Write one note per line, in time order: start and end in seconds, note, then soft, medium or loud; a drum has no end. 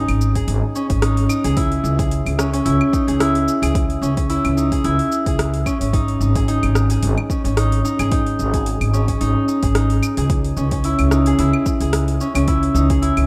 0.00 0.75 C#4 medium
0.00 1.02 D#4 loud
0.00 0.35 G#4 medium
0.08 0.45 G#1 medium
0.08 open hi-hat soft
0.08 claves medium
0.21 shaker medium
0.35 1.44 G#4 medium
0.35 kick medium
0.35 open hi-hat soft
0.35 shaker soft
0.48 0.60 G#1 loud
0.48 open hi-hat medium
0.48 shaker soft
0.75 0.89 C#4 medium
0.75 shaker medium
0.90 1.26 G#1 medium
0.90 2.38 C#4 medium
0.90 kick loud
0.90 open hi-hat soft
0.90 shaker soft
1.02 1.29 D#4 loud
1.02 cross-stick medium
1.02 open hi-hat medium
1.02 shaker soft
1.17 open hi-hat soft
1.29 1.62 D#4 medium
1.29 claves medium
1.29 shaker medium
1.44 1.81 C#2 medium
1.44 1.98 G#4 medium
1.44 open hi-hat soft
1.44 shaker soft
1.56 2.65 E4 loud
1.56 kick loud
1.56 open hi-hat medium
1.56 shaker soft
1.72 open hi-hat soft
1.84 2.22 C#2 loud
1.84 shaker medium
1.99 3.07 G#4 medium
1.99 kick loud
1.99 open hi-hat soft
1.99 shaker soft
2.11 open hi-hat medium
2.11 shaker soft
2.26 2.62 C#2 medium
2.26 open hi-hat soft
2.26 claves medium
2.38 2.53 C#4 medium
2.38 cross-stick medium
2.38 shaker medium
2.53 4.02 C#4 medium
2.53 open hi-hat soft
2.53 shaker soft
2.65 2.78 C#2 loud
2.65 2.99 E4 medium
2.65 open hi-hat medium
2.65 shaker soft
2.81 claves medium
2.93 3.26 D#4 medium
2.93 kick loud
2.93 shaker medium
3.07 3.44 C#2 loud
3.07 3.62 G#4 medium
3.07 open hi-hat soft
3.07 shaker medium
3.20 4.29 E4 loud
3.20 cross-stick medium
3.20 open hi-hat medium
3.20 shaker soft
3.35 open hi-hat soft
3.48 shaker medium
3.62 3.99 C#2 medium
3.62 4.71 G#4 medium
3.62 open hi-hat soft
3.62 claves medium
3.62 shaker soft
3.75 kick loud
3.75 open hi-hat medium
3.75 shaker soft
3.90 open hi-hat soft
4.02 4.40 C#2 medium
4.02 4.16 C#4 medium
4.02 shaker medium
4.17 5.66 C#4 medium
4.17 kick loud
4.17 open hi-hat soft
4.17 shaker soft
4.29 4.63 E4 loud
4.29 open hi-hat medium
4.29 shaker soft
4.44 4.81 C#2 medium
4.44 open hi-hat soft
4.44 claves medium
4.57 4.91 D#4 medium
4.57 shaker medium
4.72 5.27 G#4 medium
4.72 kick medium
4.72 open hi-hat soft
4.72 shaker soft
4.84 4.97 C#2 loud
4.84 6.00 E4 loud
4.84 open hi-hat medium
4.84 shaker soft
4.99 open hi-hat soft
5.12 shaker medium
5.26 5.63 C#2 loud
5.26 6.36 G#4 medium
5.26 kick loud
5.26 open hi-hat soft
5.26 shaker soft
5.39 cross-stick medium
5.39 open hi-hat medium
5.39 shaker soft
5.54 open hi-hat soft
5.66 5.81 C#4 medium
5.66 kick medium
5.66 claves medium
5.66 shaker medium
5.81 6.17 G#1 medium
5.81 7.30 C#4 medium
5.81 open hi-hat soft
5.81 shaker soft
5.93 6.21 D#4 loud
5.93 kick loud
5.93 open hi-hat medium
5.93 shaker soft
6.08 open hi-hat soft
6.21 6.59 G#1 medium
6.21 6.48 D#4 medium
6.21 shaker medium
6.35 6.90 G#4 medium
6.35 kick loud
6.35 open hi-hat soft
6.35 shaker soft
6.48 7.57 D#4 loud
6.48 open hi-hat medium
6.48 shaker soft
6.63 6.99 G#1 medium
6.63 open hi-hat soft
6.63 claves medium
6.75 cross-stick medium
6.75 shaker medium
6.90 7.99 G#4 medium
6.90 open hi-hat soft
6.90 shaker soft
7.03 7.15 G#1 loud
7.03 open hi-hat medium
7.03 shaker soft
7.18 claves medium
7.30 7.45 C#4 medium
7.30 kick loud
7.30 shaker medium
7.44 7.81 G#1 loud
7.44 8.93 C#4 medium
7.44 open hi-hat soft
7.44 shaker soft
7.57 7.84 D#4 loud
7.57 cross-stick medium
7.57 open hi-hat medium
7.57 shaker soft
7.72 open hi-hat soft
7.85 8.11 D#4 medium
7.85 shaker medium
7.99 8.35 G#1 medium
7.99 8.53 G#4 medium
7.99 open hi-hat soft
7.99 claves medium
7.99 shaker soft
8.11 9.20 D#4 loud
8.11 kick loud
8.11 open hi-hat medium
8.11 shaker soft
8.27 open hi-hat soft
8.39 8.77 G#1 medium
8.39 shaker medium
8.54 9.62 G#4 medium
8.54 kick loud
8.54 open hi-hat soft
8.54 shaker soft
8.66 open hi-hat medium
8.66 shaker soft
8.81 9.17 G#1 medium
8.81 open hi-hat soft
8.81 claves medium
8.93 9.08 C#4 medium
8.93 shaker medium
9.08 10.57 C#4 medium
9.08 kick medium
9.08 open hi-hat soft
9.08 shaker soft
9.21 9.33 G#1 loud
9.21 9.48 D#4 loud
9.21 open hi-hat medium
9.21 shaker soft
9.48 9.75 D#4 medium
9.48 shaker medium
9.63 9.99 G#1 loud
9.63 10.17 G#4 medium
9.63 kick loud
9.63 open hi-hat soft
9.63 shaker soft
9.75 10.91 D#4 loud
9.75 cross-stick medium
9.75 open hi-hat medium
9.75 shaker soft
9.90 open hi-hat soft
10.03 claves medium
10.03 shaker medium
10.17 10.54 C#2 loud
10.17 11.26 G#4 medium
10.17 open hi-hat soft
10.17 shaker soft
10.30 kick loud
10.30 open hi-hat medium
10.30 shaker soft
10.45 open hi-hat soft
10.57 10.95 C#2 medium
10.57 10.72 C#4 medium
10.57 shaker medium
10.71 12.20 C#4 medium
10.71 kick medium
10.71 open hi-hat soft
10.71 shaker soft
10.84 11.18 E4 loud
10.84 open hi-hat medium
10.84 shaker soft
10.99 11.35 C#2 medium
10.99 open hi-hat soft
10.99 claves medium
11.11 11.45 D#4 medium
11.11 cross-stick medium
11.11 shaker medium
11.26 11.80 G#4 medium
11.26 open hi-hat soft
11.26 shaker soft
11.39 11.51 C#2 loud
11.39 12.47 E4 medium
11.39 open hi-hat medium
11.39 shaker soft
11.53 claves medium
11.66 kick loud
11.66 shaker medium
11.80 12.17 C#2 loud
11.80 12.90 G#4 medium
11.80 open hi-hat soft
11.80 shaker soft
11.93 cross-stick medium
11.93 open hi-hat medium
11.93 shaker soft
12.08 open hi-hat soft
12.21 12.35 C#4 medium
12.21 shaker medium
12.35 12.71 C#2 loud
12.35 13.27 C#4 medium
12.35 open hi-hat soft
12.35 claves medium
12.35 shaker soft
12.48 12.81 E4 loud
12.48 kick loud
12.48 open hi-hat medium
12.48 shaker soft
12.63 open hi-hat soft
12.75 13.13 C#2 loud
12.75 13.08 D#4 medium
12.75 shaker medium
12.90 13.27 G#4 medium
12.90 kick medium
12.90 open hi-hat soft
12.90 shaker soft
13.02 13.27 E4 loud
13.02 open hi-hat medium
13.02 shaker soft
13.17 13.27 C#2 medium
13.17 open hi-hat soft
13.17 claves medium